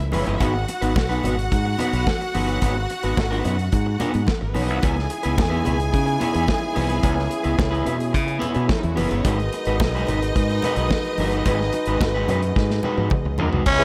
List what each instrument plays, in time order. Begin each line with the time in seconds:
0.00 fingered electric bass C#2, closed hi-hat
0.12 fingered electric bass F#1, clean electric guitar G#3 C#4 E4 B4, string section B3 B4, open hi-hat, high conga
0.20 string section C#4 C#5
0.26 fingered electric bass G1, clean electric guitar G#3 C#4 E4 B4, string section D#4 D#5, closed hi-hat
0.34 string section E4 E5
0.40 fingered electric bass G#1, clean electric guitar B3 D#4 F#4 B4, string section F#4 F#5, kick, closed hi-hat, muted conga
0.55 muted clean electric guitar stroke
0.68 muted clean electric guitar stroke, closed hi-hat, muted conga
0.81 fingered electric bass G#1, clean electric guitar B3 D#4 F#4 B4, closed hi-hat
0.95 fingered electric bass B1, muted clean electric guitar stroke, kick, snare, high conga
1.09 clean electric guitar B3 D#4 F#4 B4, closed hi-hat
1.23 fingered electric bass G#1, clean electric guitar B3 D#4 F#4 B4, closed hi-hat, low conga
1.39 closed hi-hat
1.52 fingered electric bass G#2, muted clean electric guitar stroke, kick, closed hi-hat
1.65 muted clean electric guitar stroke
1.78 clean electric guitar B3 D#4 F#4 B4, closed hi-hat, muted conga, low conga
1.93 fingered electric bass B1, clean electric guitar B3 D#4 F#4 B4, closed hi-hat
2.07 muted clean electric guitar stroke, kick, snare, high conga
2.21 muted clean electric guitar stroke, closed hi-hat
2.34 fingered electric bass G1, clean electric guitar B3 D#4 F#4 B4, open hi-hat, high conga
2.47 clean electric guitar B3 D#4 F#4 B4, closed hi-hat
2.61 fingered electric bass G#1, clean electric guitar B3 D#4 F#4 B4, kick, closed hi-hat, muted conga
2.76 muted clean electric guitar stroke
2.90 muted clean electric guitar stroke, closed hi-hat, muted conga
3.03 fingered electric bass G#1, clean electric guitar B3 D#4 F#4 B4, closed hi-hat
3.17 fingered electric bass G#1, muted clean electric guitar stroke, kick, snare, high conga
3.31 clean electric guitar B3 D#4 F#4 B4, closed hi-hat
3.44 fingered electric bass F#2, clean electric guitar B3 D#4 F#4 B4, closed hi-hat, low conga
3.58 muted clean electric guitar stroke, closed hi-hat
3.72 fingered electric bass G#2, muted clean electric guitar stroke, kick, closed hi-hat
3.86 muted clean electric guitar stroke
3.99 clean electric guitar B3 D#4 F#4 B4, closed hi-hat, muted conga, low conga
4.13 fingered electric bass G#2, muted clean electric guitar stroke, closed hi-hat
4.27 muted clean electric guitar stroke, kick, snare, high conga
4.41 fingered electric bass G#1, string section A#3 A#4, muted clean electric guitar stroke
4.49 string section B3 B4
4.54 fingered electric bass B1, clean electric guitar B3 D#4 F#4 B4, string section C#4 C#5, open hi-hat, high conga
4.63 string section D#4 D#5
4.68 fingered electric bass C2, clean electric guitar B3 D#4 F#4 B4, string section E4 E5, closed hi-hat
4.76 string section F#4 F#5
4.82 fingered electric bass C#2, french horn section C#3 G#3 B3 D#4 E4, clean electric guitar B3 E4 G#4 B4, string section G#4 G#5, kick, closed hi-hat, muted conga
4.96 muted clean electric guitar stroke, snare
5.10 muted clean electric guitar stroke, closed hi-hat, muted conga
5.23 fingered electric bass C#2, clean electric guitar B3 E4 G#4 B4, closed hi-hat
5.37 fingered electric bass E2, muted clean electric guitar stroke, kick, snare, high conga
5.50 clean electric guitar B3 E4 G#4 B4
5.64 fingered electric bass C#2, clean electric guitar B3 E4 G#4 B4, closed hi-hat, low conga
5.80 closed hi-hat
5.92 fingered electric bass C#3, muted clean electric guitar stroke, kick, closed hi-hat
6.06 muted clean electric guitar stroke, closed hi-hat
6.20 clean electric guitar B3 E4 G#4 B4, closed hi-hat, muted conga, low conga
6.34 fingered electric bass E2, clean electric guitar B3 E4 G#4 B4, closed hi-hat
6.48 muted clean electric guitar stroke, kick, snare, high conga
6.61 muted clean electric guitar stroke
6.75 fingered electric bass C2, clean electric guitar B3 E4 G#4 B4, open hi-hat, high conga
6.89 clean electric guitar B3 E4 G#4 B4, closed hi-hat
7.02 fingered electric bass C#2, clean electric guitar B3 E4 G#4 B4, french horn section C#4, kick, closed hi-hat, muted conga
7.16 muted clean electric guitar stroke, snare
7.30 muted clean electric guitar stroke, closed hi-hat, muted conga
7.43 fingered electric bass C#2, clean electric guitar B3 E4 G#4 B4, closed hi-hat
7.58 fingered electric bass C#2, muted clean electric guitar stroke, kick, snare, high conga
7.71 clean electric guitar B3 E4 G#4 B4, closed hi-hat
7.85 fingered electric bass B2, clean electric guitar B3 E4 G#4 B4, closed hi-hat, low conga
7.98 muted clean electric guitar stroke, closed hi-hat
8.12 fingered electric bass C#3, muted clean electric guitar stroke, kick, closed hi-hat
8.26 muted clean electric guitar stroke, closed hi-hat
8.39 clean electric guitar B3 E4 G#4 B4, closed hi-hat, muted conga, low conga
8.54 fingered electric bass B2, clean electric guitar B3 E4 G#4 B4, closed hi-hat
8.68 muted clean electric guitar stroke, kick, snare, high conga
8.77 string section D#3 D#4
8.82 fingered electric bass E2, string section E3 E4, muted clean electric guitar stroke, closed hi-hat
8.90 string section F#3 F#4
8.96 fingered electric bass F#1, string section G#3 G#4, clean electric guitar B3 E4 G#4 B4, open hi-hat, high conga
9.02 string section A#3 A#4
9.09 fingered electric bass G1, string section B3 B4, clean electric guitar B3 E4 G#4 B4, closed hi-hat
9.16 string section C#4 C#5
9.24 fingered electric bass G#1, clean electric guitar G#3 D#4 F#4 B4, string section D#4 D#5, french horn section D#4 F#4 A#4 B4, kick, closed hi-hat, muted conga
9.39 muted clean electric guitar stroke, closed hi-hat
9.53 muted clean electric guitar stroke, closed hi-hat, muted conga
9.65 fingered electric bass G#1, clean electric guitar G#3 D#4 F#4 B4, closed hi-hat
9.80 fingered electric bass B1, muted clean electric guitar stroke, kick, snare, high conga
9.95 clean electric guitar G#3 D#4 F#4 B4, closed hi-hat
10.07 fingered electric bass G#1, clean electric guitar G#3 D#4 F#4 B4, closed hi-hat, low conga
10.22 muted clean electric guitar stroke, closed hi-hat
10.36 fingered electric bass G#2, muted clean electric guitar stroke, kick, closed hi-hat
10.49 muted clean electric guitar stroke, closed hi-hat
10.62 clean electric guitar G#3 D#4 F#4 B4, closed hi-hat, muted conga, low conga
10.76 fingered electric bass B1, clean electric guitar G#3 D#4 F#4 B4, closed hi-hat
10.90 kick, snare, high conga
11.04 muted clean electric guitar stroke, closed hi-hat
11.18 fingered electric bass G1, clean electric guitar G#3 D#4 F#4 B4, open hi-hat, high conga
11.32 clean electric guitar G#3 D#4 F#4 B4, closed hi-hat
11.46 fingered electric bass G#1, clean electric guitar G#3 D#4 F#4 B4, french horn section G#4, kick, closed hi-hat, muted conga
11.60 muted clean electric guitar stroke, snare
11.73 muted clean electric guitar stroke, closed hi-hat, muted conga
11.86 fingered electric bass G#1, clean electric guitar G#3 D#4 F#4 B4, closed hi-hat
12.01 fingered electric bass G#1, kick, snare, high conga
12.14 clean electric guitar G#3 D#4 F#4 B4
12.28 fingered electric bass F#2, clean electric guitar G#3 D#4 F#4 B4, closed hi-hat, low conga
12.42 muted clean electric guitar stroke, closed hi-hat
12.56 fingered electric bass G#2, muted clean electric guitar stroke, kick, snare
12.70 muted clean electric guitar stroke, snare
12.83 clean electric guitar G#3 D#4 F#4 B4, muted conga, low conga
12.97 fingered electric bass G#2, clean electric guitar G#3 D#4 F#4 B4, high tom
13.10 muted clean electric guitar stroke, kick, mid tom, high conga
13.25 fingered electric bass C#2, muted clean electric guitar stroke
13.38 fingered electric bass D#2, clean electric guitar G#3 D#4 F#4 B4, floor tom, high conga
13.52 fingered electric bass C2, clean electric guitar G#3 D#4 F#4 B4, floor tom
13.65 fingered electric bass C#2, french horn section C#3 E3 G#3 B3, tenor saxophone C#4, string section E4 E5, kick, crash, muted conga
13.79 clean electric guitar G#3 C#4 E4 B4, horn section E4 G#4 B4, closed hi-hat